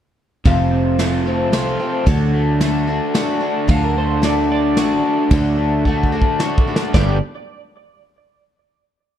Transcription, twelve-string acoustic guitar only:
0.45 0.99 F2 medium
0.45 0.99 C3 medium
0.45 0.97 F3 medium
0.45 1.00 A3 medium
0.45 0.99 C4 medium
0.45 1.00 F4 medium
0.99 1.26 F3 medium
0.99 1.26 A3 medium
0.99 1.25 C4 medium
0.99 1.24 F4 medium
1.25 1.51 F3 soft
1.25 1.52 A3 soft
1.25 1.53 C4 soft
1.25 1.53 F4 soft
1.52 1.80 F3 medium
1.52 1.80 A3 medium
1.52 1.80 C4 medium
1.52 1.78 F4 medium
1.80 2.06 F3 soft
1.80 2.06 A3 soft
1.80 2.07 C4 soft
1.80 2.07 F4 soft
2.06 3.67 D3 medium
2.06 2.59 F#3 medium
2.06 2.60 A3 medium
2.06 2.62 D4 medium
2.06 2.61 F#4 medium
2.61 2.88 F#3 medium
2.61 2.88 A3 medium
2.61 2.88 D4 medium
2.61 2.86 F#4 medium
2.87 3.14 A3 soft
2.87 3.15 D4 soft
2.87 3.15 F#4 soft
3.14 3.42 F#3 medium
3.14 3.42 A3 medium
3.14 3.41 D4 medium
3.14 3.39 F#4 medium
3.40 3.67 A3 soft
3.40 3.67 D4 soft
3.40 3.68 F#4 soft
3.68 5.31 D3 medium
3.68 4.21 F#3 medium
3.68 4.22 A3 medium
3.68 4.23 D4 medium
3.68 4.23 F#4 medium
4.22 4.76 F#3 medium
4.22 4.77 A3 medium
4.22 4.78 D4 medium
4.22 4.78 F#4 medium
4.77 5.31 F#3 medium
4.77 5.31 A3 medium
4.77 5.32 D4 medium
4.77 5.32 F#4 medium
5.31 5.86 D3 medium
5.31 5.84 F#3 medium
5.31 5.86 A3 medium
5.31 5.86 D4 medium
5.31 5.87 F#4 medium
5.86 6.13 F#3 medium
5.86 6.13 A3 medium
5.86 6.13 D4 medium
5.86 6.11 F#4 medium
6.12 6.39 A3 soft
6.12 6.41 D4 soft
6.12 6.40 F#4 medium
6.39 6.67 F#3 medium
6.39 6.67 A3 medium
6.39 6.68 D4 medium
6.39 6.66 F#4 medium
6.67 6.95 A3 soft
6.67 6.95 D4 soft
6.67 6.94 F#4 medium
6.94 7.16 G2 medium
6.94 7.16 D3 medium
6.94 7.16 G3 medium
6.94 7.16 B3 medium
6.94 7.17 D4 medium
6.94 7.17 G4 medium

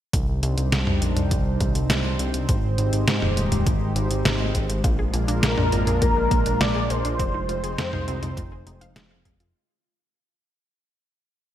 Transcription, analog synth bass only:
0.13 0.27 C2 loud
0.28 0.41 C2 medium
0.43 0.56 C2 loud
0.57 0.71 C2 medium
0.72 0.85 C2 loud
0.87 1.00 C2 medium
1.01 1.15 A#1 loud
1.16 1.29 C2 medium
1.31 1.44 C2 loud
1.46 1.59 C2 medium
1.60 1.74 C2 loud
1.75 1.88 C2 medium
1.90 2.03 C2 loud
2.05 2.18 C2 medium
2.19 2.32 C2 loud
2.34 2.47 C2 medium
2.49 2.62 G#1 loud
2.63 2.77 G#1 medium
2.78 2.91 G#1 medium
2.93 3.06 G#1 medium
3.08 3.21 G#2 loud
3.22 3.35 D#1 medium
3.37 3.50 D#1 medium
3.52 3.65 D#1 medium
3.66 3.80 G#1 loud
3.81 3.94 G#1 medium
3.96 4.09 G#1 loud
4.11 4.24 G#1 medium
4.25 4.38 G#1 loud
4.40 4.53 G#1 medium
4.55 4.68 G#1 loud
4.69 4.83 G#1 medium
4.84 4.97 A#1 loud
4.99 5.12 A#1 medium
5.14 5.27 A#1 loud
5.28 5.41 A#1 medium
5.43 5.56 A#1 loud
5.58 5.71 A#1 medium
5.72 5.85 G#1 medium
5.87 6.00 A#1 medium
6.02 6.15 A#1 loud
6.16 6.30 A#1 medium
6.31 6.44 A#1 medium
6.46 6.59 A#1 medium
6.61 6.74 A#1 loud
6.75 6.88 A#1 medium
6.90 7.03 A#1 loud
7.05 7.18 A#1 medium
7.19 7.33 F1 loud
7.34 7.47 F1 medium
7.49 7.62 F1 loud
7.63 7.77 F1 medium
7.78 7.91 F2 loud
7.93 8.06 C2 medium
8.07 8.21 C2 medium
8.22 8.35 C2 medium
8.37 8.50 F1 loud
8.52 8.65 F1 medium
8.66 8.80 F1 loud
8.81 8.94 F1 medium
8.96 9.09 F1 loud
9.11 9.24 F1 medium
9.25 9.38 F1 loud
9.40 9.53 F1 medium

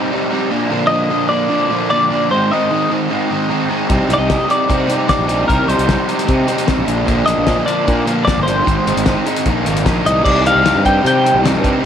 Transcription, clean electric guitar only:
0.87 1.26 D#5 loud
1.29 1.89 D5 medium
1.90 2.31 D5 medium
2.31 2.51 C5 medium
2.51 2.90 D#5 medium
4.14 4.51 D#5 medium
4.51 5.08 D5 medium
5.09 5.47 D5 medium
5.48 5.68 A#4 medium
5.68 6.08 C5 medium
7.26 7.66 D#5 loud
7.66 8.03 D5 medium
8.25 8.43 D5 medium
8.43 9.20 C5 medium
10.06 10.24 D#5 medium
10.24 10.43 D5 medium
10.47 10.86 F5 loud
10.86 11.05 G5 medium
11.07 11.61 G5 medium

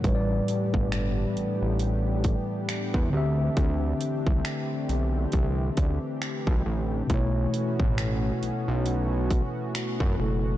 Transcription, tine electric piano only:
0.01 3.08 A2 medium
0.01 3.09 G3 medium
0.06 3.10 B4 medium
0.06 0.14 C#5 medium
0.15 3.14 D5 medium
3.10 6.60 D3 medium
3.10 6.61 C4 medium
3.14 6.63 G4 medium
3.14 6.64 E5 medium
7.07 10.13 B2 medium
7.07 10.15 A3 medium
7.12 10.16 E4 medium
7.12 10.17 C#5 medium
10.18 10.57 B2 medium
10.18 10.57 A3 medium
10.18 10.57 E4 soft
10.18 10.57 A4 medium

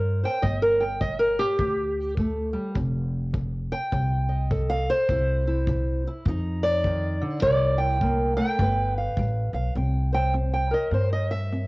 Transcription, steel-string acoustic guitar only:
0.00 0.40 C4 medium
0.00 0.42 A#4 soft
0.00 0.22 C5 soft
0.00 0.25 E5 soft
0.24 0.42 C5 soft
0.24 0.44 G5 loud
0.42 0.97 G3 medium
0.42 0.62 D#5 medium
0.62 0.82 A#4 medium
0.80 1.01 G5 medium
1.01 1.39 G3 medium
1.01 1.21 D#5 medium
1.19 1.40 A#4 medium
1.39 2.17 G4 loud
2.18 2.53 A3 soft
2.53 2.76 G3 medium
2.76 3.30 F3 medium
3.33 3.88 F3 medium
3.72 4.50 G5 loud
3.93 4.46 F3 medium
4.28 4.89 D#5 soft
4.51 5.05 F3 medium
4.51 5.07 A4 soft
4.70 4.89 F5 loud
4.90 6.06 C5 loud
5.10 5.63 C3 medium
5.10 5.46 E4 soft
5.47 6.05 E4 soft
5.69 6.22 C3 medium
6.07 6.25 E4 medium
6.28 6.81 F3 medium
6.28 7.41 D#4 medium
6.63 7.41 D5 loud
6.86 7.21 D#3 medium
7.21 7.43 D3 medium
7.42 7.96 C4 medium
7.42 8.01 E4 soft
7.42 8.57 A#4 soft
7.42 7.78 D5 loud
7.78 8.35 G5 loud
8.02 8.37 A#3 medium
8.37 8.59 A3 medium
8.37 8.95 G5 loud
8.61 9.14 G3 medium
8.61 9.74 B4 medium
8.98 9.53 F5 medium
9.19 9.72 G3 medium
9.54 9.73 F5 medium
9.76 10.30 C4 medium
9.76 10.14 G5 soft
10.12 10.73 C5 soft
10.12 10.34 G5 loud
10.34 10.87 C4 medium
10.53 10.73 G5 medium
10.71 11.67 A#4 soft
10.71 10.92 D#5 medium
10.92 11.46 C4 medium
10.92 11.12 C5 medium
11.13 11.31 D#5 medium
11.31 11.67 E5 medium
11.52 11.67 C4 medium

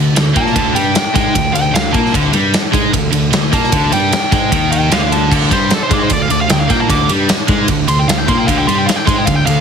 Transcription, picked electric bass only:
0.00 0.15 D2 medium
0.16 0.35 D2 medium
0.36 0.55 A#2 medium
0.56 0.74 D2 medium
0.75 0.94 G2 medium
0.96 muted picked electric bass stroke soft
1.16 1.34 G#2 medium
1.36 1.54 D2 medium
1.54 1.73 D2 medium
1.75 1.93 D2 medium
1.94 2.13 A#2 loud
2.15 2.33 D2 medium
2.33 2.52 G2 medium
2.53 muted picked electric bass stroke soft
2.74 2.92 G#2 loud
2.94 3.12 D2 medium
3.12 3.31 D2 medium
3.33 3.51 D2 medium
3.53 3.71 A#2 medium
3.73 3.91 D2 medium
3.92 4.11 G2 medium
4.13 muted picked electric bass stroke soft
4.32 4.50 G#2 medium
4.52 4.89 D#2 medium
4.92 5.28 D2 medium
5.31 5.49 D2 medium
5.51 5.69 G2 medium
5.72 muted picked electric bass stroke soft
5.91 6.09 G#2 loud
6.10 6.28 D2 medium
6.31 6.49 D2 medium
6.51 6.69 D2 medium
6.70 6.88 A#2 loud
6.90 7.08 D2 medium
7.10 7.28 G2 medium
7.30 muted picked electric bass stroke soft
7.49 7.67 G#2 loud
7.69 7.87 D2 medium
7.88 8.06 D2 medium
8.08 8.26 D2 medium
8.28 8.47 A#2 medium
8.48 8.66 D2 loud
8.68 8.86 G2 loud
8.88 muted picked electric bass stroke soft
9.07 9.26 G#2 loud
9.27 9.46 D2 medium
9.46 9.61 D2 medium

